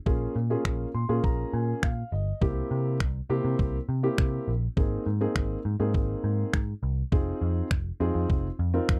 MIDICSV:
0, 0, Header, 1, 4, 480
1, 0, Start_track
1, 0, Key_signature, -4, "minor"
1, 0, Tempo, 588235
1, 51, Time_signature, 4, 2, 24, 8
1, 7342, End_track
2, 0, Start_track
2, 0, Title_t, "Grand piano"
2, 0, Program_c, 0, 0
2, 49, Note_on_c, 0, 58, 80
2, 51, Note_on_c, 0, 61, 77
2, 52, Note_on_c, 0, 65, 74
2, 54, Note_on_c, 0, 68, 91
2, 275, Note_off_c, 0, 58, 0
2, 276, Note_off_c, 0, 61, 0
2, 277, Note_off_c, 0, 65, 0
2, 278, Note_off_c, 0, 68, 0
2, 409, Note_on_c, 0, 58, 83
2, 411, Note_on_c, 0, 61, 75
2, 412, Note_on_c, 0, 65, 76
2, 414, Note_on_c, 0, 68, 90
2, 710, Note_off_c, 0, 58, 0
2, 711, Note_off_c, 0, 61, 0
2, 712, Note_off_c, 0, 65, 0
2, 713, Note_off_c, 0, 68, 0
2, 771, Note_on_c, 0, 84, 74
2, 889, Note_on_c, 0, 58, 81
2, 890, Note_on_c, 0, 61, 73
2, 891, Note_on_c, 0, 65, 75
2, 892, Note_on_c, 0, 68, 93
2, 995, Note_off_c, 0, 84, 0
2, 1010, Note_on_c, 0, 82, 73
2, 1234, Note_off_c, 0, 82, 0
2, 1251, Note_on_c, 0, 80, 72
2, 1475, Note_off_c, 0, 80, 0
2, 1490, Note_off_c, 0, 58, 0
2, 1491, Note_off_c, 0, 61, 0
2, 1491, Note_off_c, 0, 65, 0
2, 1491, Note_on_c, 0, 77, 73
2, 1492, Note_off_c, 0, 68, 0
2, 1714, Note_off_c, 0, 77, 0
2, 1732, Note_on_c, 0, 75, 71
2, 1955, Note_off_c, 0, 75, 0
2, 1969, Note_on_c, 0, 58, 82
2, 1971, Note_on_c, 0, 60, 76
2, 1973, Note_on_c, 0, 64, 76
2, 1974, Note_on_c, 0, 67, 90
2, 2420, Note_off_c, 0, 58, 0
2, 2421, Note_off_c, 0, 60, 0
2, 2422, Note_off_c, 0, 64, 0
2, 2423, Note_off_c, 0, 67, 0
2, 2689, Note_on_c, 0, 58, 90
2, 2691, Note_on_c, 0, 60, 82
2, 2692, Note_on_c, 0, 64, 78
2, 2693, Note_on_c, 0, 67, 95
2, 3065, Note_off_c, 0, 58, 0
2, 3066, Note_off_c, 0, 60, 0
2, 3067, Note_off_c, 0, 64, 0
2, 3067, Note_off_c, 0, 67, 0
2, 3290, Note_on_c, 0, 58, 83
2, 3291, Note_on_c, 0, 60, 74
2, 3293, Note_on_c, 0, 64, 77
2, 3294, Note_on_c, 0, 67, 94
2, 3666, Note_off_c, 0, 58, 0
2, 3666, Note_off_c, 0, 60, 0
2, 3667, Note_off_c, 0, 64, 0
2, 3668, Note_off_c, 0, 67, 0
2, 3891, Note_on_c, 0, 58, 78
2, 3892, Note_on_c, 0, 60, 72
2, 3894, Note_on_c, 0, 63, 76
2, 3895, Note_on_c, 0, 68, 88
2, 4116, Note_off_c, 0, 58, 0
2, 4117, Note_off_c, 0, 60, 0
2, 4118, Note_off_c, 0, 63, 0
2, 4118, Note_off_c, 0, 68, 0
2, 4249, Note_on_c, 0, 58, 85
2, 4251, Note_on_c, 0, 60, 76
2, 4252, Note_on_c, 0, 63, 78
2, 4253, Note_on_c, 0, 68, 90
2, 4550, Note_off_c, 0, 58, 0
2, 4551, Note_off_c, 0, 60, 0
2, 4552, Note_off_c, 0, 63, 0
2, 4552, Note_off_c, 0, 68, 0
2, 4729, Note_on_c, 0, 58, 80
2, 4731, Note_on_c, 0, 60, 74
2, 4732, Note_on_c, 0, 63, 76
2, 4734, Note_on_c, 0, 68, 90
2, 5330, Note_off_c, 0, 58, 0
2, 5331, Note_off_c, 0, 60, 0
2, 5332, Note_off_c, 0, 63, 0
2, 5333, Note_off_c, 0, 68, 0
2, 5809, Note_on_c, 0, 60, 85
2, 5811, Note_on_c, 0, 63, 77
2, 5812, Note_on_c, 0, 65, 75
2, 5814, Note_on_c, 0, 68, 95
2, 6260, Note_off_c, 0, 60, 0
2, 6261, Note_off_c, 0, 63, 0
2, 6262, Note_off_c, 0, 65, 0
2, 6263, Note_off_c, 0, 68, 0
2, 6529, Note_on_c, 0, 60, 89
2, 6530, Note_on_c, 0, 63, 77
2, 6532, Note_on_c, 0, 65, 79
2, 6533, Note_on_c, 0, 68, 98
2, 6905, Note_off_c, 0, 60, 0
2, 6906, Note_off_c, 0, 63, 0
2, 6907, Note_off_c, 0, 65, 0
2, 6907, Note_off_c, 0, 68, 0
2, 7130, Note_on_c, 0, 60, 84
2, 7131, Note_on_c, 0, 63, 78
2, 7132, Note_on_c, 0, 65, 81
2, 7134, Note_on_c, 0, 70, 90
2, 7342, Note_off_c, 0, 60, 0
2, 7342, Note_off_c, 0, 63, 0
2, 7342, Note_off_c, 0, 65, 0
2, 7342, Note_off_c, 0, 70, 0
2, 7342, End_track
3, 0, Start_track
3, 0, Title_t, "Picked electric bass"
3, 0, Program_c, 1, 34
3, 52, Note_on_c, 1, 34, 100
3, 208, Note_off_c, 1, 34, 0
3, 292, Note_on_c, 1, 46, 98
3, 448, Note_off_c, 1, 46, 0
3, 530, Note_on_c, 1, 34, 105
3, 687, Note_off_c, 1, 34, 0
3, 772, Note_on_c, 1, 46, 91
3, 850, Note_off_c, 1, 46, 0
3, 892, Note_on_c, 1, 46, 90
3, 970, Note_off_c, 1, 46, 0
3, 1010, Note_on_c, 1, 34, 98
3, 1166, Note_off_c, 1, 34, 0
3, 1252, Note_on_c, 1, 46, 91
3, 1408, Note_off_c, 1, 46, 0
3, 1493, Note_on_c, 1, 46, 96
3, 1648, Note_off_c, 1, 46, 0
3, 1732, Note_on_c, 1, 31, 85
3, 1888, Note_off_c, 1, 31, 0
3, 1972, Note_on_c, 1, 36, 101
3, 2128, Note_off_c, 1, 36, 0
3, 2212, Note_on_c, 1, 48, 100
3, 2450, Note_on_c, 1, 36, 91
3, 2463, Note_off_c, 1, 48, 0
3, 2607, Note_off_c, 1, 36, 0
3, 2692, Note_on_c, 1, 48, 89
3, 2770, Note_off_c, 1, 48, 0
3, 2812, Note_on_c, 1, 48, 89
3, 2890, Note_off_c, 1, 48, 0
3, 2931, Note_on_c, 1, 36, 105
3, 3087, Note_off_c, 1, 36, 0
3, 3172, Note_on_c, 1, 48, 96
3, 3328, Note_off_c, 1, 48, 0
3, 3413, Note_on_c, 1, 48, 103
3, 3569, Note_off_c, 1, 48, 0
3, 3653, Note_on_c, 1, 34, 82
3, 3808, Note_off_c, 1, 34, 0
3, 3892, Note_on_c, 1, 32, 101
3, 4048, Note_off_c, 1, 32, 0
3, 4132, Note_on_c, 1, 44, 94
3, 4288, Note_off_c, 1, 44, 0
3, 4370, Note_on_c, 1, 32, 104
3, 4527, Note_off_c, 1, 32, 0
3, 4611, Note_on_c, 1, 44, 92
3, 4689, Note_off_c, 1, 44, 0
3, 4731, Note_on_c, 1, 44, 95
3, 4850, Note_on_c, 1, 32, 102
3, 4862, Note_off_c, 1, 44, 0
3, 5007, Note_off_c, 1, 32, 0
3, 5091, Note_on_c, 1, 44, 97
3, 5247, Note_off_c, 1, 44, 0
3, 5333, Note_on_c, 1, 44, 101
3, 5489, Note_off_c, 1, 44, 0
3, 5571, Note_on_c, 1, 36, 92
3, 5727, Note_off_c, 1, 36, 0
3, 5811, Note_on_c, 1, 29, 108
3, 5967, Note_off_c, 1, 29, 0
3, 6051, Note_on_c, 1, 41, 101
3, 6207, Note_off_c, 1, 41, 0
3, 6290, Note_on_c, 1, 29, 101
3, 6446, Note_off_c, 1, 29, 0
3, 6531, Note_on_c, 1, 41, 93
3, 6610, Note_off_c, 1, 41, 0
3, 6651, Note_on_c, 1, 41, 97
3, 6729, Note_off_c, 1, 41, 0
3, 6770, Note_on_c, 1, 29, 109
3, 6927, Note_off_c, 1, 29, 0
3, 7011, Note_on_c, 1, 41, 104
3, 7168, Note_off_c, 1, 41, 0
3, 7253, Note_on_c, 1, 41, 94
3, 7342, Note_off_c, 1, 41, 0
3, 7342, End_track
4, 0, Start_track
4, 0, Title_t, "Drums"
4, 52, Note_on_c, 9, 36, 111
4, 133, Note_off_c, 9, 36, 0
4, 530, Note_on_c, 9, 36, 106
4, 531, Note_on_c, 9, 26, 114
4, 612, Note_off_c, 9, 36, 0
4, 613, Note_off_c, 9, 26, 0
4, 1010, Note_on_c, 9, 36, 111
4, 1092, Note_off_c, 9, 36, 0
4, 1493, Note_on_c, 9, 26, 110
4, 1493, Note_on_c, 9, 36, 114
4, 1574, Note_off_c, 9, 26, 0
4, 1574, Note_off_c, 9, 36, 0
4, 1972, Note_on_c, 9, 36, 116
4, 2053, Note_off_c, 9, 36, 0
4, 2450, Note_on_c, 9, 36, 108
4, 2451, Note_on_c, 9, 26, 116
4, 2532, Note_off_c, 9, 36, 0
4, 2533, Note_off_c, 9, 26, 0
4, 2931, Note_on_c, 9, 36, 107
4, 3012, Note_off_c, 9, 36, 0
4, 3413, Note_on_c, 9, 26, 113
4, 3413, Note_on_c, 9, 36, 119
4, 3495, Note_off_c, 9, 26, 0
4, 3495, Note_off_c, 9, 36, 0
4, 3892, Note_on_c, 9, 36, 115
4, 3974, Note_off_c, 9, 36, 0
4, 4370, Note_on_c, 9, 36, 114
4, 4371, Note_on_c, 9, 26, 118
4, 4452, Note_off_c, 9, 36, 0
4, 4453, Note_off_c, 9, 26, 0
4, 4850, Note_on_c, 9, 36, 108
4, 4932, Note_off_c, 9, 36, 0
4, 5333, Note_on_c, 9, 26, 111
4, 5333, Note_on_c, 9, 36, 116
4, 5414, Note_off_c, 9, 26, 0
4, 5414, Note_off_c, 9, 36, 0
4, 5812, Note_on_c, 9, 36, 119
4, 5893, Note_off_c, 9, 36, 0
4, 6290, Note_on_c, 9, 36, 114
4, 6291, Note_on_c, 9, 26, 114
4, 6372, Note_off_c, 9, 36, 0
4, 6373, Note_off_c, 9, 26, 0
4, 6770, Note_on_c, 9, 36, 106
4, 6852, Note_off_c, 9, 36, 0
4, 7253, Note_on_c, 9, 26, 113
4, 7253, Note_on_c, 9, 36, 111
4, 7335, Note_off_c, 9, 26, 0
4, 7335, Note_off_c, 9, 36, 0
4, 7342, End_track
0, 0, End_of_file